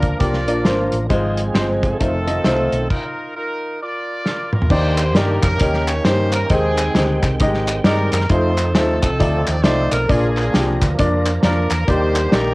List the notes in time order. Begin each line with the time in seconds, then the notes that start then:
Already playing: D2 F3 A#3 D4 F4 A#4
0.02 kick, closed hi-hat
0.19 C2 A#3 D4 F4 G4 A#4 D5, kick, closed hi-hat
0.34 snare
0.47 A#1 A#3 D4 F4 D5, closed hi-hat
0.65 G#1 A#3 D4 F4 C5, snare, closed hi-hat
0.92 A1, closed hi-hat
1.09 G#1 G#2 F3 G#3 C4 F4 G#4 C5, kick, closed hi-hat
1.37 closed hi-hat
1.54 G1 G#3 C4 F4 C5 D#5, snare, closed hi-hat
1.83 C4 D#4 A4, kick, closed hi-hat
2.00 F1 D#3 A3 C4 D#4 F4 C5, kick, closed hi-hat
2.27 A3 D#4 F4 D#5, closed hi-hat
2.44 C2 A3 D#4 F4 C5, snare, closed hi-hat
2.72 B1, closed hi-hat
2.90 D#4 F4 A#4, kick, crash
3.35 D#4 F4 A#4
3.81 F4 A#4 D5
4.25 A#4, snare
4.53 A#4, mid tom
4.62 floor tom
4.70 D#2 D#3 A#3 D4 D#4 G4 C5 D5, kick, crash
4.97 clap, closed hi-hat
5.15 G2 A#3 D#4 G4 A#4 D5, snare, closed hi-hat
5.42 F2 C#4 G4 A#4, kick, clap, closed hi-hat
5.59 D#2 D#3 A#3 C#4 D#4 G4 C#5, kick, closed hi-hat
5.74 snare
5.88 C#5, clap, closed hi-hat
6.05 G2 A#3 D#4 G4 C5, snare, closed hi-hat
6.32 A#4, clap, closed hi-hat
6.50 D#2 D#3 G#3 C4 D#4 G4 G#4 C5 G5, kick, closed hi-hat
6.77 clap, closed hi-hat
6.95 D2 G#3 D#4 G4 C5, snare, closed hi-hat
7.23 C2, kick, clap, closed hi-hat
7.40 G#1 G#3 D#4 G4 D#5, kick, closed hi-hat
7.54 snare
7.67 clap, closed hi-hat
7.84 G2 G#3 D#4 G4 A#4 D5, snare, closed hi-hat
8.12 F#2 A#4, clap, closed hi-hat
8.21 snare
8.29 F2 F3 A3 C4 D#4 F4 G#4 A4 C5, kick, closed hi-hat
8.37 A4
8.57 clap, closed hi-hat
8.75 D#2 A3 D#4 F4 A4 C5, snare, closed hi-hat
9.02 C2 C4 D#4 A4, kick, clap, closed hi-hat
9.19 D2 A3 D#4 F4 D5, kick, closed hi-hat
9.47 D#2 D5, clap, closed hi-hat
9.64 C2 A3 D#4 F4 C5 D5, snare, closed hi-hat
9.91 B1 A#4, clap, closed hi-hat
10.08 A#1 A#2 F3 A#3 D4 F4 G#4 A#4 D5, kick, closed hi-hat
10.36 clap, closed hi-hat
10.54 C2 A#3 D4 F4 G4, snare, closed hi-hat
10.81 D2, kick, clap, closed hi-hat
10.98 F2 A#3 D4 F4 D5, kick, closed hi-hat
11.26 clap, closed hi-hat
11.43 F2 A#3 D4 F4 A#4 D5, snare, closed hi-hat
11.70 E2 A#4, clap, closed hi-hat
11.87 D#2 D#3 G3 A#3 D4 D#4 G4 C5 D5, kick, closed hi-hat
12.16 clap, closed hi-hat
12.32 A#1 A#3 D#4 G4 A#4 D5, snare, closed hi-hat